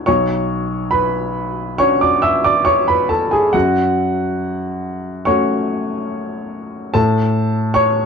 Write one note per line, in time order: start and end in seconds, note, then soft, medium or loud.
0.06 3.51 B1 soft
0.06 0.89 C#5 medium
0.06 0.92 C#6 medium
0.91 1.76 B4 soft
0.91 1.79 B5 medium
1.78 3.50 C#4 soft
1.78 3.50 D4 soft
1.78 3.50 F#4 soft
1.78 2.00 C#5 medium
1.78 2.01 C#6 medium
2.01 2.23 D5 soft
2.01 2.23 D6 medium
2.22 2.43 E5 medium
2.22 2.45 E6 medium
2.44 2.66 D5 soft
2.44 2.67 D6 medium
2.65 2.87 C#5 soft
2.65 2.88 C#6 medium
2.88 3.09 B4 soft
2.88 3.10 B5 medium
3.09 3.31 A4 soft
3.09 3.32 A5 medium
3.31 3.53 G#4 soft
3.31 3.53 G#5 medium
3.53 6.91 F#2 soft
3.53 5.23 F#4 medium
3.53 5.26 F#5 medium
5.25 6.92 A3 soft
5.25 6.92 C#4 soft
5.25 6.92 F#4 soft
5.25 6.91 C#5 soft
5.25 6.95 C#6 medium
6.94 8.06 A2 medium
6.94 7.72 A4 medium
6.94 7.75 A5 medium
7.74 8.06 C#5 medium
7.74 8.06 C#6 medium